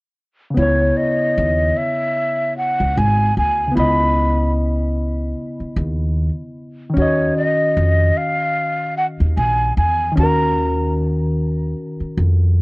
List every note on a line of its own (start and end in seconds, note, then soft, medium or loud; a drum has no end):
0.50 3.66 C#3 medium
0.50 3.70 B3 medium
0.57 0.90 C#2 medium
0.57 3.73 E4 medium
0.57 0.99 C#5 medium
0.63 3.75 C#5 medium
0.97 1.79 D#5 medium
1.37 1.70 D#2 medium
1.77 2.56 E5 medium
2.58 2.99 F#5 medium
2.80 2.94 C#2 medium
2.98 3.30 G#1 medium
2.98 3.37 G#5 medium
3.37 3.70 D2 medium
3.37 3.74 G#5 medium
3.68 6.88 C#3 medium
3.72 6.90 B3 medium
3.72 6.92 E4 medium
3.77 5.32 C#2 medium
3.77 6.94 D#5 medium
3.77 4.53 B5 medium
5.60 muted upright bass stroke soft
5.76 6.28 D#2 medium
6.90 10.09 D#3 medium
6.94 7.29 D#2 medium
6.94 10.11 C#4 medium
6.94 7.34 C#5 medium
6.98 10.13 F#4 medium
6.98 10.15 D#5 medium
7.37 8.19 D#5 medium
7.77 8.09 F2 medium
8.17 8.96 F5 loud
8.97 9.06 F#5 medium
9.20 9.33 D#2 medium
9.37 9.70 A#1 medium
9.37 9.74 G#5 loud
9.77 10.10 E2 medium
9.77 10.14 G#5 medium
10.12 12.62 D#3 medium
10.12 12.62 C#4 medium
10.17 11.73 D#2 loud
10.17 12.62 F#4 medium
10.17 10.93 A#5 loud
10.24 12.62 A#4 medium
12.00 muted upright bass stroke soft
12.18 12.62 F2 medium